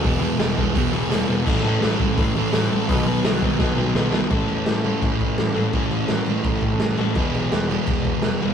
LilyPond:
<<
  \new Staff \with { instrumentName = "Distorted electric guitar" } { \time 4/4 \key a \lydian \tempo 4 = 168 <e gis b e'>8 <e gis b e'>8 <e gis b e'>8 <e gis b e'>8 <e gis b e'>8 <e gis b e'>8 <e gis b e'>8 <e gis b e'>8 | <a, e a cis' e'>8 <a, e a cis' e'>8 <a, e a cis' e'>8 <a, e a cis' e'>8 <a, e a cis' e'>8 <a, e a cis' e'>8 <a, e a cis' e'>8 <a, e a cis' e'>8 | <b, dis fis b dis'>8 <b, dis fis b dis'>8 <b, dis fis b dis'>8 <b, dis fis b dis'>8 <b, dis fis b dis'>8 <b, dis fis b dis'>8 <b, dis fis b dis'>8 <b, dis fis b dis'>8 | <a, e a cis' e'>4. <a, e a cis' e'>2~ <a, e a cis' e'>8 |
<a, e a cis' e'>4. <a, e a cis' e'>2~ <a, e a cis' e'>8 | <e gis b e'>4. <e gis b e'>2~ <e gis b e'>8 | }
  \new Staff \with { instrumentName = "Overdriven electric guitar" } { \clef bass \time 4/4 \key a \lydian <e, b, e>8 <e, b, e>8 <e, b, e>8 <e, b, e>8 <e, b, e>8 <e, b, e>8 <e, b, e>8 <e, b, e>8 | <a, e a>8 <a, e a>8 <a, e a>8 <a, e a>8 <a, e a>8 <a, e a>8 <a, e a>8 <a, e a>8 | <b, fis b>8 <b, fis b>8 <b, fis b>8 <b, fis b>8 <b, fis b>8 <b, fis b>8 <b, fis b>8 <b, fis b>8 | <a, e a>2.~ <a, e a>8 <a, e a>8 |
<a, e a>2.~ <a, e a>8 <a, e a>8 | <e, b, e>2.~ <e, b, e>8 <e, b, e>8 | }
  \new Staff \with { instrumentName = "Picked electric bass" } { \clef bass \time 4/4 \key a \lydian e,,8 e,8 e,,8 e,,8 e,,8 e,,8 e,,8 e,,8 | a,,8 a,8 a,,8 a,,8 a,,8 a,,8 a,,8 a,,8 | b,,8 b,8 b,,8 b,,8 b,,8 b,,8 b,,8 b,,8 | a,,8 e,8 a,,4 a,,4 a,,8 a,,8 |
a,,8 a,,8 a,,8 a,,8 a,,8 a,,8 fis,,8 a,,8 | e,,8 b,,8 e,,4 e,,4 e,,8 e,,8 | }
  \new DrumStaff \with { instrumentName = "Drums" } \drummode { \time 4/4 <hho bd>4 <hho sn>8 bd8 <hho bd>4 <hho sn>4 | <cymc bd>4 <hho sn>8 bd8 <hho bd>4 <hho sn>4 | <hho bd>4 <hho sn>8 bd8 <bd sn>4 sn8 sn8 | <cymc bd>8 cymc8 <cymc sn>8 cymc8 <cymc bd>8 <cymc bd>8 <cymc sn>8 cymc8 |
<cymc bd>8 cymc8 <cymc sn>8 cymc8 <cymc bd>8 <cymc bd>8 <cymc sn>8 cymc8 | <cymc bd>8 cymc8 <cymc sn>8 cymc8 <cymc bd>8 <cymc bd>8 <cymc sn>8 cymc8 | }
>>